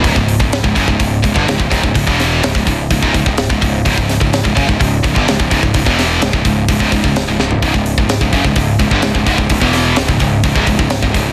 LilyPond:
<<
  \new Staff \with { instrumentName = "Distorted electric guitar" } { \clef bass \time 4/4 \key cis \minor \tempo 4 = 127 <cis, gis,>16 <cis, gis,>8 <cis, gis,>8 <cis, gis,>16 <fis, cis>16 <cis, gis,>16 <cis, gis,>8 <cis, gis,>16 <g, d>16 <cis, gis,>16 <cis, gis,>16 <cis, gis,>16 <cis, gis,>16 | <cis, gis,>16 <e, b, e>8. <cis, gis,>16 <cis, gis,>16 <cis, gis,>8 <cis, gis,>16 <cis, gis,>16 <cis, gis,>16 <cis, gis,>8 <cis, gis,>16 <cis, gis,>8 | <cis, gis,>16 <cis, gis,>8 <cis, gis,>8 <cis, gis,>16 <fis, cis>16 <cis, gis,>16 <cis, gis,>8 <cis, gis,>16 <g, d>16 <cis, gis,>16 <cis, gis,>16 <cis, gis,>16 <cis, gis,>16 | <cis, gis,>16 <e, b, e>8. <cis, gis,>16 <cis, gis,>16 <cis, gis,>8 <cis, gis,>16 <cis, gis,>16 <cis, gis,>16 <cis, gis,>8 <cis, gis,>16 <cis, gis,>8 |
<cis, gis,>16 <cis, gis,>8 <cis, gis,>8 <cis, gis,>16 <fis, cis>16 <cis, gis,>16 <cis, gis,>8 <cis, gis,>16 <g, d>16 <cis, gis,>16 <cis, gis,>16 <cis, gis,>16 <cis, gis,>16 | <cis, gis,>16 <e, b, e>8. <cis, gis,>16 <cis, gis,>16 <cis, gis,>8 <cis, gis,>16 <cis, gis,>16 <cis, gis,>16 <cis, gis,>8 <cis, gis,>16 <cis, gis,>8 | }
  \new Staff \with { instrumentName = "Distorted electric guitar" } { \clef bass \time 4/4 \key cis \minor <cis, gis,>16 <cis, gis,>8 <cis, gis,>8 <cis, gis,>16 <fis, cis>16 <cis, gis,>16 <cis, gis,>8 <cis, gis,>16 <g, d>16 <cis, gis,>16 <cis, gis,>16 <cis, gis,>16 <cis, gis,>16 | <cis, gis,>16 <e, b, e>8. <cis, gis,>16 <cis, gis,>16 <cis, gis,>8 <cis, gis,>16 <cis, gis,>16 <cis, gis,>16 <cis, gis,>8 <cis, gis,>16 <cis, gis,>8 | <cis, gis,>16 <cis, gis,>8 <cis, gis,>8 <cis, gis,>16 <fis, cis>16 <cis, gis,>16 <cis, gis,>8 <cis, gis,>16 <g, d>16 <cis, gis,>16 <cis, gis,>16 <cis, gis,>16 <cis, gis,>16 | <cis, gis,>16 <e, b, e>8. <cis, gis,>16 <cis, gis,>16 <cis, gis,>8 <cis, gis,>16 <cis, gis,>16 <cis, gis,>16 <cis, gis,>8 <cis, gis,>16 <cis, gis,>8 |
<cis, gis,>16 <cis, gis,>8 <cis, gis,>8 <cis, gis,>16 <fis, cis>16 <cis, gis,>16 <cis, gis,>8 <cis, gis,>16 <g, d>16 <cis, gis,>16 <cis, gis,>16 <cis, gis,>16 <cis, gis,>16 | <cis, gis,>16 <e, b, e>8. <cis, gis,>16 <cis, gis,>16 <cis, gis,>8 <cis, gis,>16 <cis, gis,>16 <cis, gis,>16 <cis, gis,>8 <cis, gis,>16 <cis, gis,>8 | }
  \new Staff \with { instrumentName = "Distorted electric guitar" } { \clef bass \time 4/4 \key cis \minor r1 | r1 | r1 | r1 |
<cis, gis,>16 <cis, gis,>8 <cis, gis,>8 <cis, gis,>16 <fis, cis>16 <cis, gis,>16 <cis, gis,>8 <cis, gis,>16 <g, d>16 <cis, gis,>16 <cis, gis,>16 <cis, gis,>16 <cis, gis,>16 | <cis, gis,>16 <e, b, e>8. <cis, gis,>16 <cis, gis,>16 <cis, gis,>8 <cis, gis,>16 <cis, gis,>16 <cis, gis,>16 <cis, gis,>8 <cis, gis,>16 <cis, gis,>8 | }
  \new Staff \with { instrumentName = "Picked electric bass" } { \clef bass \time 4/4 \key cis \minor cis,,16 cis,,8 r8 cis,,16 fis,,16 cis,,16 cis,,8 cis,,16 g,,16 cis,,16 cis,,16 cis,,16 cis,,16 | cis,,16 e,,8. cis,,16 cis,,16 cis,,8 cis,,16 cis,,16 cis,,16 cis,,8 cis,,16 cis,,8 | cis,,16 cis,,8 cis,,8 cis,,16 fis,,16 cis,,16 cis,,8 cis,,16 g,,16 cis,,16 cis,,16 cis,,16 cis,,16 | cis,,16 e,,8. cis,,16 cis,,16 cis,,8 cis,,16 cis,,16 cis,,16 cis,,8 cis,,16 cis,,8 |
cis,,16 cis,,8 cis,,8 cis,,16 fis,,16 cis,,16 cis,,8 cis,,16 g,,16 cis,,16 cis,,16 cis,,16 cis,,16 | cis,,16 e,,8. cis,,16 cis,,16 cis,,8 cis,,16 cis,,16 cis,,16 cis,,8 cis,,16 cis,,8 | }
  \new DrumStaff \with { instrumentName = "Drums" } \drummode { \time 4/4 <hho bd>16 bd16 hho16 bd16 <hho sn>16 bd16 <hho bd>16 bd16 <hho bd>8 <hho bd>16 bd16 <hho sn>16 bd16 <hho bd>16 bd16 | <hho bd>16 bd16 <hho sn>8 <hho sn>16 bd16 <hho bd>8 <hho bd>16 bd16 <hho bd>16 bd16 <hho sn>16 bd16 <hho bd>8 | <hho bd>16 bd16 <hho sn>16 bd16 <hho sn>16 bd16 <hho bd>16 bd16 <hho bd>8 <hho bd>16 bd16 <hho sn>16 bd16 <hho bd>16 bd16 | <hho bd>16 bd16 <hho sn>8 <hho sn>16 bd16 <hho bd>8 <hho bd>16 bd16 <hho bd>16 bd16 <hho sn>8 sn16 tomfh16 |
<hho bd>16 bd16 hho16 bd16 <hho sn>16 bd16 <hho bd>16 bd16 <hho bd>8 <hho bd>16 bd16 <hho sn>16 bd16 <hho bd>16 bd16 | <hho bd>16 bd16 <hho sn>8 <hho sn>16 bd16 <hho bd>8 <hho bd>16 bd16 <hho bd>16 bd16 <hho sn>16 bd16 <hho bd>8 | }
>>